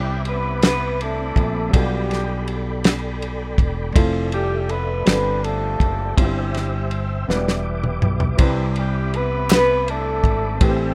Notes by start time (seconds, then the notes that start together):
Already playing: C2 C3 G3 C4 D4 E4 G4 B4 E5 B5 D6
0.25 B3 B4, ride bell
0.62 B3 B4, snare, ride bell
1.01 A3 D4 E4 A4, ride bell
1.36 A#1, kick, ride bell
1.71 B1 B2 G3 B3 D4 F4 A4 G5 B5, kick, ride bell
1.75 G3 D4 G4 A4 D5
2.11 snare, ride bell
2.48 ride bell
2.84 snare, ride bell
3.22 ride bell
3.58 E1, kick, ride bell
3.94 F1 A3 C4 E4 F4 A4 E5, kick, ride bell
4.32 G3 G4, ride bell
4.69 B3 B4, ride bell
5.05 G1 G3 B3 C4 D4 F4 A4 B4 G5, snare, ride bell
5.10 D4 F4
5.44 A3 C4 F4 A4, ride bell
5.80 F#1, kick, ride bell
6.16 G1 G2 G3 C4 E4 F4 G4 C5 E5 E6, kick, ride bell
6.20 C4 E4
6.25 G4
6.54 snare, ride bell
6.91 ride bell
7.28 E1 E3 F#3 B3 D4 E4 B4 D6, snare
7.35 G3
7.48 snare
7.84 mid tom
8.02 B1, mid tom
8.20 floor tom
8.37 C2 C3 G3 C4 D4 E4 B4 B5, kick, ride bell
8.76 G3 G4, ride bell
9.14 B3 B4, ride bell
9.50 B3 B4, snare, clap, ride bell
9.88 A3 D4 E4 A4, ride bell
10.24 G#1, kick, ride bell
10.58 A1 A2 A3 C4 E4 G4 G5 A5 E6, kick, ride bell
10.63 G3 C4 E4 G4 B4
10.69 C5